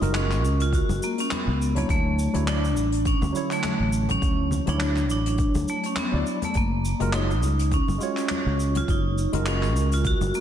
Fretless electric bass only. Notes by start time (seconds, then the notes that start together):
0.02 F#1
0.44 C#2
0.89 F#1
1.47 C#2
1.89 D2
2.35 D2
2.76 A1
3.22 D2
3.80 A1
4.22 D2
4.67 D2
5.09 A1
5.55 D2
6.13 D2
6.55 F#1
7.01 F#1
7.42 C#2
7.88 F#1
8.46 C#2
8.88 F#1
9.33 F#1
9.75 C#2
10.21 F#1